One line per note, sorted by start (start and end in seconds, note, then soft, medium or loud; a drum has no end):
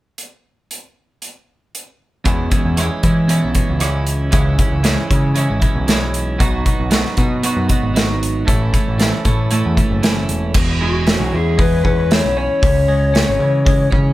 0.18 closed hi-hat soft
0.71 closed hi-hat soft
1.22 closed hi-hat soft
1.75 closed hi-hat soft
2.24 2.77 E2 medium
2.24 2.50 E2 medium
2.24 2.77 B2 medium
2.24 2.54 E3 medium
2.24 2.53 G#3 medium
2.24 2.51 C#4 medium
2.24 2.50 E4 medium
2.24 kick medium
2.24 closed hi-hat medium
2.50 2.78 G#3 medium
2.50 2.78 C#4 medium
2.50 2.80 E4 medium
2.50 kick medium
2.50 closed hi-hat medium
2.54 2.76 E3 soft
2.65 2.89 E2 medium
2.77 3.06 E3 medium
2.77 3.05 G#3 medium
2.77 3.04 C#4 medium
2.77 3.02 E4 medium
2.77 cross-stick medium
2.77 closed hi-hat medium
3.03 3.39 E3 medium
3.03 3.28 E3 medium
3.03 3.29 G#3 medium
3.03 3.29 C#4 medium
3.03 3.30 E4 medium
3.03 kick medium
3.03 closed hi-hat soft
3.28 3.80 E2 medium
3.28 3.81 B2 medium
3.28 3.56 E3 medium
3.28 3.55 G#3 medium
3.28 3.54 C#4 medium
3.28 3.52 E4 medium
3.28 closed hi-hat medium
3.44 3.55 B1 medium
3.54 3.78 E3 soft
3.54 3.79 G#3 medium
3.54 3.80 C#4 medium
3.54 3.81 E4 medium
3.54 kick medium
3.54 closed hi-hat medium
3.70 4.30 C#2 medium
3.79 4.30 E3 medium
3.79 4.31 G#3 medium
3.79 4.32 C#4 medium
3.79 4.32 E4 medium
3.79 cross-stick loud
3.79 closed hi-hat medium
4.07 closed hi-hat medium
4.31 4.57 C#2 medium
4.31 4.84 C#3 medium
4.31 4.82 E3 medium
4.31 4.60 G#3 medium
4.31 4.58 C#4 medium
4.31 4.57 E4 medium
4.31 kick medium
4.31 closed hi-hat medium
4.58 4.83 G#3 soft
4.58 4.84 C#4 medium
4.58 4.85 E4 medium
4.58 kick medium
4.58 closed hi-hat medium
4.72 4.96 C#2 medium
4.83 5.34 E3 medium
4.83 5.10 G#3 medium
4.83 5.08 C#4 medium
4.83 5.07 E4 medium
4.83 snare medium
4.83 closed hi-hat medium
5.08 5.47 C#3 medium
5.08 5.35 G#3 soft
5.08 5.36 C#4 soft
5.08 5.37 E4 medium
5.08 kick medium
5.08 closed hi-hat medium
5.34 5.88 C#3 medium
5.34 5.86 E3 medium
5.34 5.63 G#3 medium
5.34 5.61 C#4 medium
5.34 5.59 E4 medium
5.34 closed hi-hat medium
5.50 5.62 G#1 medium
5.60 5.87 G#3 soft
5.60 5.88 C#4 medium
5.60 5.89 E4 medium
5.60 kick medium
5.60 closed hi-hat medium
5.75 6.36 B1 medium
5.87 6.38 E3 medium
5.87 6.39 G#3 medium
5.87 6.39 C#4 medium
5.87 6.40 E4 medium
5.87 snare medium
5.87 closed hi-hat medium
6.14 closed hi-hat medium
6.38 6.64 B1 medium
6.38 6.91 B2 medium
6.38 6.89 F#3 medium
6.38 6.68 B3 medium
6.38 6.66 D#4 medium
6.38 6.64 F#4 medium
6.38 kick medium
6.38 closed hi-hat medium
6.65 6.90 B3 soft
6.65 6.92 D#4 medium
6.65 6.93 F#4 medium
6.65 kick medium
6.65 closed hi-hat medium
6.80 7.04 B1 medium
6.90 7.42 F#3 medium
6.90 7.18 B3 medium
6.90 7.17 D#4 medium
6.90 7.16 F#4 medium
6.90 snare medium
6.90 closed hi-hat medium
7.05 snare soft
7.17 7.54 B2 medium
7.17 7.43 B3 soft
7.17 7.44 D#4 medium
7.17 7.45 F#4 medium
7.17 kick medium
7.17 closed hi-hat medium
7.43 7.95 B2 medium
7.43 7.92 F#3 medium
7.43 7.71 B3 medium
7.43 7.69 D#4 medium
7.43 7.67 F#4 medium
7.43 closed hi-hat medium
7.57 7.69 F#2 medium
7.68 7.94 B3 medium
7.68 7.95 D#4 medium
7.68 7.96 F#4 medium
7.68 kick medium
7.68 closed hi-hat medium
7.82 8.43 G#1 medium
7.94 8.45 F#3 medium
7.94 8.46 B3 medium
7.94 8.46 D#4 medium
7.94 8.47 F#4 medium
7.94 snare loud
7.94 closed hi-hat medium
8.23 closed hi-hat medium
8.45 8.72 A1 medium
8.45 8.98 A2 medium
8.45 8.97 E3 medium
8.45 8.75 A3 medium
8.45 8.73 C#4 medium
8.45 kick medium
8.45 closed hi-hat medium
8.49 8.71 E4 medium
8.73 8.99 A3 medium
8.73 9.00 C#4 medium
8.73 9.01 E4 medium
8.73 kick medium
8.73 closed hi-hat medium
8.88 9.11 A1 medium
8.98 9.50 E3 medium
8.98 9.27 A3 medium
8.98 9.26 C#4 medium
8.98 snare medium
8.98 closed hi-hat medium
9.02 9.24 E4 medium
9.25 9.61 A2 medium
9.25 9.51 A3 medium
9.25 9.52 C#4 medium
9.25 9.53 E4 medium
9.25 kick medium
9.25 closed hi-hat medium
9.51 10.03 A2 medium
9.51 10.01 E3 medium
9.51 9.79 A3 medium
9.51 9.77 C#4 medium
9.51 9.75 E4 medium
9.51 closed hi-hat medium
9.66 9.77 E2 medium
9.77 10.03 A3 medium
9.77 10.04 C#4 medium
9.77 10.06 E4 medium
9.77 kick medium
9.77 closed hi-hat soft
9.91 10.02 F#1 medium
10.03 10.27 F#1 medium
10.03 10.53 E3 medium
10.03 10.54 A3 medium
10.03 10.55 C#4 medium
10.03 snare loud
10.03 closed hi-hat medium
10.07 10.55 E4 medium
10.29 10.52 E1 medium
10.29 closed hi-hat medium
10.54 11.16 E1 medium
10.54 11.84 E2 medium
10.54 kick loud
10.54 crash medium
10.81 11.56 G#3 medium
10.81 11.35 F#4 medium
11.07 11.84 C#4 medium
11.07 snare medium
11.07 open hi-hat soft
11.20 11.32 B1 medium
11.33 11.81 E2 medium
11.33 12.62 E3 medium
11.33 11.60 G#4 medium
11.58 12.62 G#3 medium
11.58 11.83 B4 medium
11.58 kick medium
11.58 open hi-hat soft
11.85 12.20 E2 medium
11.85 12.35 C#4 medium
11.85 12.11 B4 medium
11.85 kick medium
12.11 12.63 E4 medium
12.11 12.37 C#5 medium
12.11 snare loud
12.11 open hi-hat soft
12.24 12.48 B1 medium
12.37 12.62 C#4 medium
12.37 13.88 C#5 medium
12.62 13.23 C#2 loud
12.62 13.91 C#3 medium
12.62 kick loud
12.62 open hi-hat soft
12.88 13.64 G#3 medium
13.14 13.90 C#4 medium
13.14 snare medium
13.14 open hi-hat soft
13.29 13.39 G#1 medium
13.39 13.87 C#3 medium
13.39 14.13 E3 medium
13.65 14.13 G#3 medium
13.65 kick loud
13.65 open hi-hat soft
13.91 14.13 C#3 medium
13.91 14.13 C#4 medium
13.91 kick medium